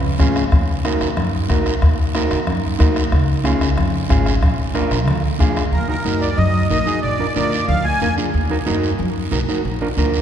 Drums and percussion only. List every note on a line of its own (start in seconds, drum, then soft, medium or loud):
0.19 bombo low medium
0.19 bombo rim medium
0.19 high conga medium
0.19 low conga medium
0.19 short guiro medium
0.36 bombo rim medium
0.36 short guiro medium
0.52 bombo low medium
0.52 bombo rim medium
0.52 low conga medium
0.52 long guiro medium
0.85 bombo rim medium
0.85 high conga medium
0.85 short guiro medium
1.01 bombo rim medium
1.01 short guiro medium
1.17 bombo rim medium
1.17 low conga medium
1.17 long guiro medium
1.49 bombo low medium
1.49 bombo rim medium
1.49 high conga medium
1.49 short guiro medium
1.66 bombo rim medium
1.66 short guiro medium
1.82 bombo low medium
1.82 bombo rim medium
1.82 long guiro medium
2.15 bombo rim medium
2.15 high conga medium
2.15 short guiro medium
2.31 bombo rim medium
2.31 short guiro medium
2.47 bombo rim medium
2.47 low conga medium
2.47 long guiro medium
2.80 bombo low medium
2.80 bombo rim medium
2.80 high conga medium
2.80 short guiro medium
2.96 bombo rim medium
2.96 short guiro medium
3.12 bombo low medium
3.12 bombo rim medium
3.12 long guiro medium
3.45 bombo rim medium
3.45 high conga medium
3.45 short guiro medium
3.61 bombo rim medium
3.61 short guiro medium
3.78 bombo rim medium
3.78 low conga medium
3.78 long guiro medium
4.10 bombo low medium
4.10 bombo rim medium
4.10 high conga medium
4.10 short guiro medium
4.26 bombo rim medium
4.26 short guiro medium
4.42 bombo low medium
4.42 bombo rim medium
4.42 low conga medium
4.42 long guiro medium
4.75 bombo rim medium
4.75 high conga medium
4.75 short guiro medium
4.91 bombo rim medium
4.91 short guiro medium
5.08 bombo rim medium
5.08 low conga medium
5.08 long guiro medium
5.40 bombo low medium
5.40 bombo rim medium
5.40 high conga medium
5.40 short guiro medium
5.56 bombo rim medium
5.56 short guiro medium
5.73 low conga medium
5.73 long guiro medium
6.05 high conga medium
6.05 short guiro medium
6.22 short guiro medium
6.38 low conga medium
6.38 long guiro medium
6.70 high conga medium
6.70 low conga medium
6.70 short guiro medium
6.87 short guiro medium
7.03 long guiro medium
7.36 high conga medium
7.36 short guiro medium
7.52 short guiro medium
7.68 low conga medium
7.68 long guiro medium
7.85 high conga medium
8.01 high conga medium
8.01 short guiro medium
8.18 short guiro medium
8.34 long guiro medium
8.66 high conga medium
8.66 short guiro medium
8.83 short guiro medium
8.99 low conga medium
8.99 long guiro medium
9.31 high conga medium
9.31 short guiro medium
9.49 short guiro medium
9.65 long guiro medium
9.97 high conga medium
9.97 short guiro medium
10.14 short guiro medium